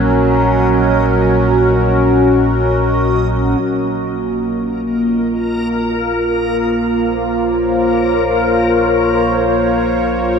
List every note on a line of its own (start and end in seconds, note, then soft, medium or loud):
0.00 3.59 A#1 medium
0.00 3.59 A#2 medium
0.00 3.60 F#3 medium
0.00 5.75 C#4 medium
0.00 3.60 F#4 medium
0.00 5.17 A#4 medium
0.00 3.63 D#5 medium
3.57 10.39 A#1 medium
3.57 10.39 A#2 medium
3.57 10.39 A#3 medium
3.57 10.39 A#4 medium
4.17 10.39 F4 medium
5.95 10.39 C5 medium
6.95 10.39 C#5 medium